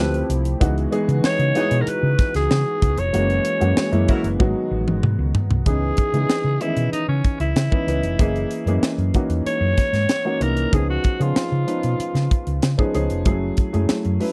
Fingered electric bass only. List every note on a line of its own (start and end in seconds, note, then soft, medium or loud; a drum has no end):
0.00 0.22 D2 loud
0.29 0.53 C2 medium
0.61 0.85 C#2 loud
1.08 1.20 C#3 loud
1.24 muted fingered electric bass stroke soft
1.39 1.51 C#3 loud
1.71 1.83 B2 medium
1.87 muted fingered electric bass stroke soft
2.03 2.15 C#3 medium
2.35 2.47 C#2 medium
2.51 2.63 C#3 loud
2.82 2.94 C#2 medium
2.97 3.10 F1 medium
3.14 3.38 F#1 loud
3.61 3.73 F#2 medium
3.77 muted fingered electric bass stroke soft
3.92 4.05 F#2 medium
4.24 4.36 F#1 medium
4.40 4.52 G#1 loud
4.71 4.87 A1 medium
4.87 4.99 G#1 medium
5.03 5.15 G#2 medium
5.19 5.31 C#2 loud
5.50 5.62 C2 medium
5.66 5.90 C#2 medium
6.13 6.26 C#3 medium
6.29 muted fingered electric bass stroke soft
6.44 6.57 C#3 medium
6.77 6.89 B2 medium
6.93 muted fingered electric bass stroke soft
7.08 7.21 C#3 medium
7.40 7.52 C#2 medium
7.56 7.68 C#3 medium
7.87 7.99 C#2 medium
8.03 8.15 F1 medium
8.19 8.43 F#1 medium
8.66 8.78 F#2 medium
8.82 muted fingered electric bass stroke soft
8.98 9.10 F#2 medium
9.29 9.42 E2 medium
9.45 muted fingered electric bass stroke soft
9.61 9.73 F#2 loud
9.93 10.05 G#2 medium
10.40 10.65 C2 medium
10.73 10.97 C#2 medium
11.20 11.32 C#3 medium
11.36 muted fingered electric bass stroke soft
11.52 11.64 C#3 medium
11.84 11.96 B2 medium
11.99 muted fingered electric bass stroke soft
12.15 12.27 C#3 medium
12.47 12.59 C#2 medium
12.63 12.75 C#3 loud
12.95 13.07 C#2 medium
13.11 13.26 F1 medium
13.26 13.50 F#1 loud
13.74 13.86 F#2 medium
13.90 muted fingered electric bass stroke soft
14.05 14.17 F#2 medium